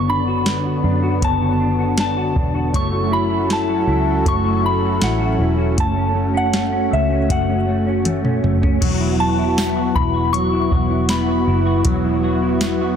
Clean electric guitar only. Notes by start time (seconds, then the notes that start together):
Already playing: B3 F#4 C#5
0.08 D4
0.27 F#4
0.46 D4
0.65 F#4
0.84 D4
1.02 F#4
1.22 B3 C#5
1.41 F#4
1.60 D4
1.79 F#4
1.98 D4
2.17 F#4
2.35 D4
2.54 F#4
2.73 A3 C#5
2.92 F#4
3.11 E4
3.30 F#4
3.49 E4
3.68 F#4
3.88 E4
4.06 F#4
4.25 A3 C#5
4.44 F#4
4.63 E4
4.82 F#4
5.01 E4
5.20 F#4
5.39 E4
5.58 F#4
5.76 A3 F#4
5.96 C#4
6.15 A3
6.34 C#4
6.53 A3
6.72 C#4
6.90 A3
7.09 C#4
7.29 A3 F#4
7.48 C#4
7.67 A3
7.86 C#4
8.05 A3
8.24 C#4
8.43 A3
8.62 C#4
8.81 F#3 F#4
9.00 E4
9.19 F#4
9.38 E4
9.57 B3
9.76 F#4
9.95 E4
10.13 F#4
10.33 F#3 F#4
10.52 E4
10.71 F#4
10.90 E4
11.09 B3
11.28 F#4
11.47 E4
11.66 F#4
11.85 F#3 F#4
12.04 E4
12.23 F#4
12.42 E4
12.61 B3
12.80 F#4